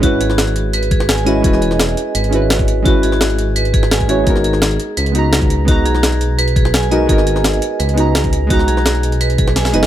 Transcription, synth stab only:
X:1
M:4/4
L:1/8
Q:1/4=170
K:G#m
V:1 name="Synth stab"
[G,CEFB]6- [G,CEFB] [G,CEFB] | [G,CEFB]4- [G,CEFB] [G,CEFB]3 | [G,CEFB]6- [G,CEFB] [G,CEFc] | [G,B,DFA]4- [G,B,DFA] [G,B,DFa]3 |
[G,B,DFa]6- [G,B,DFa] [G,B,DFA] | [G,B,DFA]4- [G,B,DFA] [G,B,DFa]3 | [G,B,DFa]6- [G,B,DFa] [G,B,DFB] |]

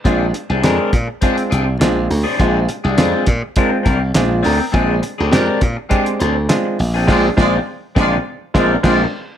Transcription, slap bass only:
X:1
M:4/4
L:1/16
Q:1/4=102
K:Bbmix
V:1 name="Slap bass" clef=bass
B,,,2 z C,, F,, z B,, z3 C,,2 B,,,2 D,, z | B,,,2 z C,, F,, z B,, z3 C,,2 B,,,2 D,, z | B,,,2 z D,, F,, z B,, z3 D,,2 z2 B,,,2 | B,,,2 B,,,2 z2 B,,,2 z2 B,,,2 B,,,2 z2 |]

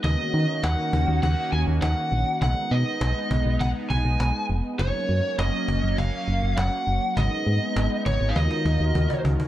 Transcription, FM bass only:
X:1
M:4/4
L:1/16
Q:1/4=101
K:Ebm
V:1 name="FM bass" clef=bass
E,, z E, z E,, z E,, E,, E,, z E,, E,, E,, z B,,, z | =B,,, z =B,, z B,,, z B,,, B,,, B,,, z B,,, B,,, B,,, z F,,, z | G,,, z G,, z G,,, z G,,, G,,, G,,, z G,,, G,,, G,,, z G,,, z | A,,, z A,, z A,,, z A,,, A,,, E,, z E,, E,, E,, z D,, z |]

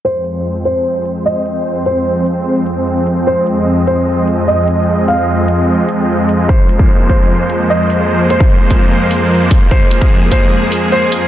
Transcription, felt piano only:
X:1
M:4/4
L:1/8
Q:1/4=149
K:Fm
V:1 name="Felt piano"
c3 c3 e2- | e c6- c | c3 c3 e2- | e f6- f |
c3 c3 e2- | e c6- c | c3 c3 c2 |]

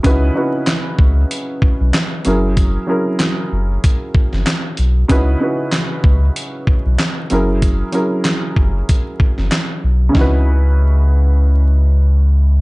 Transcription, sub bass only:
X:1
M:4/4
L:1/16
Q:"Swing 16ths" 1/4=95
K:C#dor
V:1 name="Sub bass" clef=bass
C,,2 z4 C,,2 z3 B,,, z2 F,,,2- | F,,,2 z4 F,,,2 z3 F,,, z2 B,,,2 | C,,2 z4 C,,2 z3 B,,, z2 F,,,2- | F,,,2 z4 F,,,2 z3 F,,, z2 B,,,2 |
C,,16 |]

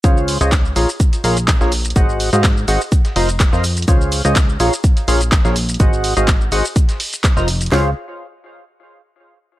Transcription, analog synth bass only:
X:1
M:4/4
L:1/16
Q:"Swing 16ths" 1/4=125
K:Db
V:1 name="Analog synth bass" clef=bass
D,,3 D,,3 B,,, z3 B,,,3 B,,,3 | A,,,3 A,,3 A,,, z3 F,,,3 F,,3 | D,,3 D,,3 B,,, z3 B,,,3 B,,,3 | A,,,3 A,,,3 A,,, z6 F,,,3 |
D,,2 z12 z2 |]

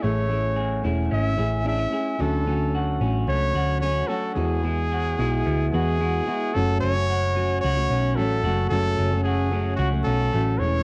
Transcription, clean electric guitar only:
X:1
M:4/4
L:1/16
Q:1/4=111
K:F#m
V:1 name="Clean electric guitar"
A,2 E2 G2 E2 C2 G2 D E G2 | D,2 C2 F2 C2 A,2 F2 C2 F2 | E,2 E2 F2 E2 B,2 F2 E2 F2 | F,,2 C2 F2 C2 F2 C2 A,2 F2 |
F,,2 C2 F2 C2 F2 C2 A,2 E,2 |]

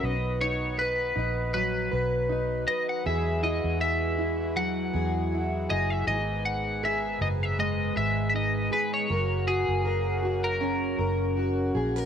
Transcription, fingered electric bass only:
X:1
M:4/4
L:1/16
Q:"Swing 16ths" 1/4=79
K:B
V:1 name="Fingered electric bass" clef=bass
B,,,6 A,,,4 B,,,4 z2 | E,,3 E,,6- E,, E,,4 F,,,2 | G,,,6 F,,,4 G,,,4 z2 | F,,,3 F,,,6- F,,, F,,,4 A,,,2 |]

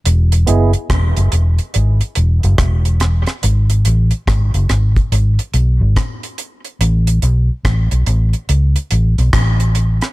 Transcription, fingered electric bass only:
X:1
M:4/4
L:1/16
Q:"Swing 16ths" 1/4=71
K:E
V:1 name="Fingered electric bass" clef=bass
E,,,2 F,,, z E,,, F,,, E,,, z G,,, z E,,, F,,, E,,,3 z | G,,,2 A,,, z G,,, F,,, G,,, z G,,, z B,,, G,,, z4 | A,,,2 B,,, z A,,, B,,, A,,, z C,, z A,,, B,,, A,,,3 z |]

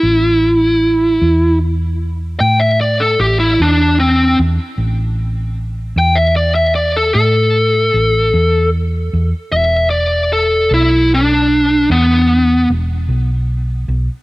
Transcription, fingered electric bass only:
X:1
M:12/8
L:1/16
Q:3/8=51
K:Ador
V:1 name="Fingered electric bass" clef=bass
A,,,6 E,,6 A,,4 A,,,2 E,,4 E,, z | A,,,6 E,,6 A,,4 A,,,2 E,,4 E,, z | E,,,6 B,,,6 E,,4 E,,,2 B,,,4 B,,, z |]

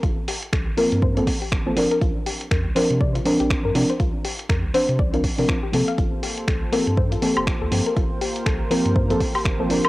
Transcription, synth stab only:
X:1
M:4/4
L:1/16
Q:"Swing 16ths" 1/4=121
K:Gm
V:1 name="Synth stab"
z6 [F,B,CB]3 [F,B,CA] z3 [F,B,CA] [F,CDB]2- | [F,CDB]6 [F,CDB]2 z2 [F,CDB]4 [F,CDB] z | z6 [F,CDc]3 [F,CDB] z [F,CDB]2 z [F,B,CA]2- | [F,B,CA]6 [F,B,CA]2 z2 [F,B,CA]4 [F,B,CA] z |
z6 [F,B,CB]3 [F,B,CA] z3 [F,B,CA] [F,CDB]2 |]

